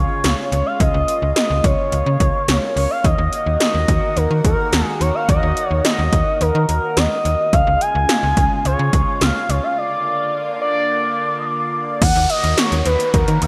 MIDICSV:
0, 0, Header, 1, 6, 480
1, 0, Start_track
1, 0, Key_signature, -6, "minor"
1, 0, Tempo, 560748
1, 686, Time_signature, 4, 2, 24, 8
1, 11532, End_track
2, 0, Start_track
2, 0, Title_t, "Analog synth lead"
2, 0, Program_c, 0, 81
2, 0, Note_on_c, 0, 73, 102
2, 413, Note_off_c, 0, 73, 0
2, 448, Note_on_c, 0, 73, 93
2, 567, Note_on_c, 0, 77, 93
2, 580, Note_off_c, 0, 73, 0
2, 682, Note_off_c, 0, 77, 0
2, 688, Note_on_c, 0, 75, 107
2, 1133, Note_off_c, 0, 75, 0
2, 1168, Note_on_c, 0, 75, 97
2, 1408, Note_on_c, 0, 73, 108
2, 1421, Note_off_c, 0, 75, 0
2, 2363, Note_off_c, 0, 73, 0
2, 2368, Note_on_c, 0, 73, 94
2, 2487, Note_on_c, 0, 77, 97
2, 2500, Note_off_c, 0, 73, 0
2, 2607, Note_on_c, 0, 75, 109
2, 2620, Note_off_c, 0, 77, 0
2, 3082, Note_off_c, 0, 75, 0
2, 3087, Note_on_c, 0, 75, 102
2, 3567, Note_on_c, 0, 70, 99
2, 3580, Note_off_c, 0, 75, 0
2, 3802, Note_off_c, 0, 70, 0
2, 3807, Note_on_c, 0, 70, 97
2, 4158, Note_off_c, 0, 70, 0
2, 4158, Note_on_c, 0, 68, 97
2, 4287, Note_on_c, 0, 73, 96
2, 4300, Note_off_c, 0, 68, 0
2, 4407, Note_on_c, 0, 77, 99
2, 4419, Note_off_c, 0, 73, 0
2, 4522, Note_off_c, 0, 77, 0
2, 4527, Note_on_c, 0, 75, 110
2, 4878, Note_off_c, 0, 75, 0
2, 4878, Note_on_c, 0, 73, 110
2, 4973, Note_off_c, 0, 73, 0
2, 5007, Note_on_c, 0, 75, 105
2, 5487, Note_on_c, 0, 70, 105
2, 5500, Note_off_c, 0, 75, 0
2, 5722, Note_off_c, 0, 70, 0
2, 5727, Note_on_c, 0, 70, 96
2, 5967, Note_on_c, 0, 75, 109
2, 5980, Note_off_c, 0, 70, 0
2, 6447, Note_on_c, 0, 77, 117
2, 6460, Note_off_c, 0, 75, 0
2, 6687, Note_on_c, 0, 80, 120
2, 6700, Note_off_c, 0, 77, 0
2, 7402, Note_off_c, 0, 80, 0
2, 7407, Note_on_c, 0, 73, 109
2, 7887, Note_on_c, 0, 77, 111
2, 7900, Note_off_c, 0, 73, 0
2, 8127, Note_on_c, 0, 73, 101
2, 8140, Note_off_c, 0, 77, 0
2, 8247, Note_on_c, 0, 77, 99
2, 8260, Note_off_c, 0, 73, 0
2, 8363, Note_off_c, 0, 77, 0
2, 8368, Note_on_c, 0, 74, 112
2, 9053, Note_off_c, 0, 74, 0
2, 9087, Note_on_c, 0, 74, 103
2, 9712, Note_off_c, 0, 74, 0
2, 9746, Note_on_c, 0, 75, 73
2, 9806, Note_on_c, 0, 74, 104
2, 9819, Note_off_c, 0, 75, 0
2, 10285, Note_on_c, 0, 78, 115
2, 10298, Note_off_c, 0, 74, 0
2, 10520, Note_off_c, 0, 78, 0
2, 10525, Note_on_c, 0, 75, 104
2, 10764, Note_on_c, 0, 73, 101
2, 10777, Note_off_c, 0, 75, 0
2, 11000, Note_off_c, 0, 73, 0
2, 11005, Note_on_c, 0, 71, 93
2, 11245, Note_on_c, 0, 70, 95
2, 11258, Note_off_c, 0, 71, 0
2, 11486, Note_on_c, 0, 77, 98
2, 11498, Note_off_c, 0, 70, 0
2, 11532, Note_off_c, 0, 77, 0
2, 11532, End_track
3, 0, Start_track
3, 0, Title_t, "Analog synth pad"
3, 0, Program_c, 1, 89
3, 0, Note_on_c, 1, 49, 86
3, 0, Note_on_c, 1, 56, 76
3, 0, Note_on_c, 1, 65, 95
3, 667, Note_off_c, 1, 56, 0
3, 686, Note_on_c, 1, 58, 77
3, 2572, Note_off_c, 1, 49, 0
3, 2572, Note_off_c, 1, 65, 0
3, 2606, Note_on_c, 1, 66, 89
3, 2607, Note_on_c, 1, 51, 84
3, 6412, Note_off_c, 1, 51, 0
3, 6412, Note_off_c, 1, 58, 0
3, 6412, Note_off_c, 1, 66, 0
3, 6446, Note_on_c, 1, 49, 83
3, 6446, Note_on_c, 1, 56, 76
3, 6446, Note_on_c, 1, 65, 90
3, 8347, Note_off_c, 1, 49, 0
3, 8347, Note_off_c, 1, 56, 0
3, 8365, Note_on_c, 1, 50, 84
3, 8365, Note_on_c, 1, 58, 74
3, 10252, Note_off_c, 1, 65, 0
3, 10266, Note_off_c, 1, 50, 0
3, 10266, Note_off_c, 1, 58, 0
3, 10285, Note_on_c, 1, 51, 86
3, 10286, Note_on_c, 1, 58, 76
3, 10286, Note_on_c, 1, 66, 93
3, 11532, Note_off_c, 1, 51, 0
3, 11532, Note_off_c, 1, 58, 0
3, 11532, Note_off_c, 1, 66, 0
3, 11532, End_track
4, 0, Start_track
4, 0, Title_t, "FM bass"
4, 0, Program_c, 2, 39
4, 206, Note_on_c, 2, 37, 106
4, 299, Note_off_c, 2, 37, 0
4, 445, Note_on_c, 2, 37, 107
4, 538, Note_off_c, 2, 37, 0
4, 686, Note_on_c, 2, 37, 110
4, 779, Note_off_c, 2, 37, 0
4, 806, Note_on_c, 2, 37, 97
4, 899, Note_off_c, 2, 37, 0
4, 1046, Note_on_c, 2, 37, 91
4, 1139, Note_off_c, 2, 37, 0
4, 1286, Note_on_c, 2, 37, 98
4, 1379, Note_off_c, 2, 37, 0
4, 1405, Note_on_c, 2, 37, 109
4, 1498, Note_off_c, 2, 37, 0
4, 1646, Note_on_c, 2, 37, 100
4, 1739, Note_off_c, 2, 37, 0
4, 1766, Note_on_c, 2, 49, 100
4, 1859, Note_off_c, 2, 49, 0
4, 1886, Note_on_c, 2, 37, 101
4, 1978, Note_off_c, 2, 37, 0
4, 2125, Note_on_c, 2, 37, 112
4, 2218, Note_off_c, 2, 37, 0
4, 2365, Note_on_c, 2, 37, 102
4, 2458, Note_off_c, 2, 37, 0
4, 2606, Note_on_c, 2, 39, 113
4, 2699, Note_off_c, 2, 39, 0
4, 2725, Note_on_c, 2, 39, 102
4, 2818, Note_off_c, 2, 39, 0
4, 2965, Note_on_c, 2, 39, 92
4, 3058, Note_off_c, 2, 39, 0
4, 3205, Note_on_c, 2, 39, 94
4, 3298, Note_off_c, 2, 39, 0
4, 3325, Note_on_c, 2, 39, 100
4, 3418, Note_off_c, 2, 39, 0
4, 3565, Note_on_c, 2, 39, 101
4, 3658, Note_off_c, 2, 39, 0
4, 3686, Note_on_c, 2, 51, 94
4, 3778, Note_off_c, 2, 51, 0
4, 3805, Note_on_c, 2, 39, 99
4, 3898, Note_off_c, 2, 39, 0
4, 4046, Note_on_c, 2, 39, 104
4, 4139, Note_off_c, 2, 39, 0
4, 4286, Note_on_c, 2, 39, 104
4, 4379, Note_off_c, 2, 39, 0
4, 4526, Note_on_c, 2, 39, 114
4, 4619, Note_off_c, 2, 39, 0
4, 4646, Note_on_c, 2, 39, 100
4, 4738, Note_off_c, 2, 39, 0
4, 4885, Note_on_c, 2, 39, 91
4, 4978, Note_off_c, 2, 39, 0
4, 5125, Note_on_c, 2, 39, 104
4, 5218, Note_off_c, 2, 39, 0
4, 5244, Note_on_c, 2, 39, 99
4, 5338, Note_off_c, 2, 39, 0
4, 5486, Note_on_c, 2, 39, 112
4, 5579, Note_off_c, 2, 39, 0
4, 5605, Note_on_c, 2, 51, 106
4, 5698, Note_off_c, 2, 51, 0
4, 5726, Note_on_c, 2, 39, 95
4, 5819, Note_off_c, 2, 39, 0
4, 5966, Note_on_c, 2, 39, 95
4, 6059, Note_off_c, 2, 39, 0
4, 6206, Note_on_c, 2, 39, 99
4, 6299, Note_off_c, 2, 39, 0
4, 6446, Note_on_c, 2, 37, 109
4, 6539, Note_off_c, 2, 37, 0
4, 6565, Note_on_c, 2, 37, 98
4, 6658, Note_off_c, 2, 37, 0
4, 6806, Note_on_c, 2, 37, 96
4, 6898, Note_off_c, 2, 37, 0
4, 7046, Note_on_c, 2, 37, 101
4, 7139, Note_off_c, 2, 37, 0
4, 7165, Note_on_c, 2, 37, 93
4, 7258, Note_off_c, 2, 37, 0
4, 7406, Note_on_c, 2, 37, 101
4, 7499, Note_off_c, 2, 37, 0
4, 7526, Note_on_c, 2, 49, 104
4, 7619, Note_off_c, 2, 49, 0
4, 7646, Note_on_c, 2, 37, 101
4, 7738, Note_off_c, 2, 37, 0
4, 7886, Note_on_c, 2, 37, 110
4, 7979, Note_off_c, 2, 37, 0
4, 8126, Note_on_c, 2, 37, 106
4, 8219, Note_off_c, 2, 37, 0
4, 10286, Note_on_c, 2, 39, 120
4, 10379, Note_off_c, 2, 39, 0
4, 10406, Note_on_c, 2, 39, 105
4, 10499, Note_off_c, 2, 39, 0
4, 10646, Note_on_c, 2, 39, 94
4, 10739, Note_off_c, 2, 39, 0
4, 10886, Note_on_c, 2, 39, 100
4, 10979, Note_off_c, 2, 39, 0
4, 11006, Note_on_c, 2, 39, 103
4, 11099, Note_off_c, 2, 39, 0
4, 11247, Note_on_c, 2, 39, 103
4, 11339, Note_off_c, 2, 39, 0
4, 11366, Note_on_c, 2, 51, 102
4, 11459, Note_off_c, 2, 51, 0
4, 11486, Note_on_c, 2, 39, 102
4, 11532, Note_off_c, 2, 39, 0
4, 11532, End_track
5, 0, Start_track
5, 0, Title_t, "Downlifter"
5, 0, Program_c, 3, 103
5, 10286, Note_on_c, 3, 60, 86
5, 11532, Note_off_c, 3, 60, 0
5, 11532, End_track
6, 0, Start_track
6, 0, Title_t, "Drums"
6, 205, Note_on_c, 9, 42, 84
6, 208, Note_on_c, 9, 38, 118
6, 291, Note_off_c, 9, 42, 0
6, 293, Note_off_c, 9, 38, 0
6, 449, Note_on_c, 9, 42, 73
6, 534, Note_off_c, 9, 42, 0
6, 686, Note_on_c, 9, 36, 105
6, 686, Note_on_c, 9, 42, 76
6, 772, Note_off_c, 9, 36, 0
6, 772, Note_off_c, 9, 42, 0
6, 927, Note_on_c, 9, 42, 75
6, 1013, Note_off_c, 9, 42, 0
6, 1165, Note_on_c, 9, 38, 108
6, 1165, Note_on_c, 9, 42, 82
6, 1251, Note_off_c, 9, 38, 0
6, 1251, Note_off_c, 9, 42, 0
6, 1405, Note_on_c, 9, 36, 102
6, 1405, Note_on_c, 9, 42, 78
6, 1490, Note_off_c, 9, 36, 0
6, 1490, Note_off_c, 9, 42, 0
6, 1646, Note_on_c, 9, 42, 70
6, 1732, Note_off_c, 9, 42, 0
6, 1885, Note_on_c, 9, 36, 93
6, 1885, Note_on_c, 9, 42, 83
6, 1971, Note_off_c, 9, 36, 0
6, 1971, Note_off_c, 9, 42, 0
6, 2125, Note_on_c, 9, 42, 82
6, 2128, Note_on_c, 9, 38, 116
6, 2211, Note_off_c, 9, 42, 0
6, 2213, Note_off_c, 9, 38, 0
6, 2368, Note_on_c, 9, 46, 73
6, 2454, Note_off_c, 9, 46, 0
6, 2606, Note_on_c, 9, 36, 109
6, 2606, Note_on_c, 9, 42, 73
6, 2692, Note_off_c, 9, 36, 0
6, 2692, Note_off_c, 9, 42, 0
6, 2847, Note_on_c, 9, 42, 74
6, 2933, Note_off_c, 9, 42, 0
6, 3085, Note_on_c, 9, 38, 111
6, 3085, Note_on_c, 9, 42, 80
6, 3171, Note_off_c, 9, 38, 0
6, 3171, Note_off_c, 9, 42, 0
6, 3324, Note_on_c, 9, 42, 80
6, 3325, Note_on_c, 9, 36, 101
6, 3410, Note_off_c, 9, 36, 0
6, 3410, Note_off_c, 9, 42, 0
6, 3566, Note_on_c, 9, 42, 68
6, 3652, Note_off_c, 9, 42, 0
6, 3806, Note_on_c, 9, 36, 96
6, 3806, Note_on_c, 9, 42, 85
6, 3891, Note_off_c, 9, 36, 0
6, 3891, Note_off_c, 9, 42, 0
6, 4045, Note_on_c, 9, 42, 83
6, 4048, Note_on_c, 9, 38, 118
6, 4131, Note_off_c, 9, 42, 0
6, 4133, Note_off_c, 9, 38, 0
6, 4288, Note_on_c, 9, 42, 72
6, 4374, Note_off_c, 9, 42, 0
6, 4526, Note_on_c, 9, 36, 111
6, 4526, Note_on_c, 9, 42, 76
6, 4612, Note_off_c, 9, 36, 0
6, 4612, Note_off_c, 9, 42, 0
6, 4766, Note_on_c, 9, 42, 78
6, 4852, Note_off_c, 9, 42, 0
6, 5005, Note_on_c, 9, 38, 113
6, 5005, Note_on_c, 9, 42, 81
6, 5090, Note_off_c, 9, 38, 0
6, 5090, Note_off_c, 9, 42, 0
6, 5244, Note_on_c, 9, 36, 99
6, 5244, Note_on_c, 9, 42, 80
6, 5329, Note_off_c, 9, 42, 0
6, 5330, Note_off_c, 9, 36, 0
6, 5486, Note_on_c, 9, 42, 70
6, 5571, Note_off_c, 9, 42, 0
6, 5725, Note_on_c, 9, 42, 82
6, 5811, Note_off_c, 9, 42, 0
6, 5965, Note_on_c, 9, 42, 84
6, 5967, Note_on_c, 9, 38, 114
6, 6050, Note_off_c, 9, 42, 0
6, 6053, Note_off_c, 9, 38, 0
6, 6208, Note_on_c, 9, 42, 71
6, 6294, Note_off_c, 9, 42, 0
6, 6446, Note_on_c, 9, 36, 110
6, 6446, Note_on_c, 9, 42, 75
6, 6532, Note_off_c, 9, 36, 0
6, 6532, Note_off_c, 9, 42, 0
6, 6687, Note_on_c, 9, 42, 77
6, 6772, Note_off_c, 9, 42, 0
6, 6925, Note_on_c, 9, 38, 113
6, 6925, Note_on_c, 9, 42, 78
6, 7011, Note_off_c, 9, 38, 0
6, 7011, Note_off_c, 9, 42, 0
6, 7164, Note_on_c, 9, 42, 81
6, 7165, Note_on_c, 9, 36, 97
6, 7250, Note_off_c, 9, 36, 0
6, 7250, Note_off_c, 9, 42, 0
6, 7406, Note_on_c, 9, 42, 69
6, 7491, Note_off_c, 9, 42, 0
6, 7645, Note_on_c, 9, 36, 96
6, 7645, Note_on_c, 9, 42, 85
6, 7731, Note_off_c, 9, 36, 0
6, 7731, Note_off_c, 9, 42, 0
6, 7885, Note_on_c, 9, 42, 83
6, 7887, Note_on_c, 9, 38, 117
6, 7971, Note_off_c, 9, 42, 0
6, 7973, Note_off_c, 9, 38, 0
6, 8128, Note_on_c, 9, 42, 75
6, 8214, Note_off_c, 9, 42, 0
6, 10286, Note_on_c, 9, 36, 114
6, 10286, Note_on_c, 9, 42, 76
6, 10286, Note_on_c, 9, 49, 105
6, 10372, Note_off_c, 9, 36, 0
6, 10372, Note_off_c, 9, 42, 0
6, 10372, Note_off_c, 9, 49, 0
6, 10406, Note_on_c, 9, 42, 53
6, 10492, Note_off_c, 9, 42, 0
6, 10527, Note_on_c, 9, 42, 76
6, 10612, Note_off_c, 9, 42, 0
6, 10645, Note_on_c, 9, 42, 58
6, 10731, Note_off_c, 9, 42, 0
6, 10765, Note_on_c, 9, 38, 119
6, 10765, Note_on_c, 9, 42, 84
6, 10851, Note_off_c, 9, 38, 0
6, 10851, Note_off_c, 9, 42, 0
6, 10888, Note_on_c, 9, 42, 66
6, 10974, Note_off_c, 9, 42, 0
6, 11004, Note_on_c, 9, 42, 82
6, 11090, Note_off_c, 9, 42, 0
6, 11127, Note_on_c, 9, 42, 59
6, 11212, Note_off_c, 9, 42, 0
6, 11246, Note_on_c, 9, 42, 72
6, 11247, Note_on_c, 9, 36, 103
6, 11332, Note_off_c, 9, 36, 0
6, 11332, Note_off_c, 9, 42, 0
6, 11366, Note_on_c, 9, 42, 52
6, 11451, Note_off_c, 9, 42, 0
6, 11485, Note_on_c, 9, 42, 88
6, 11532, Note_off_c, 9, 42, 0
6, 11532, End_track
0, 0, End_of_file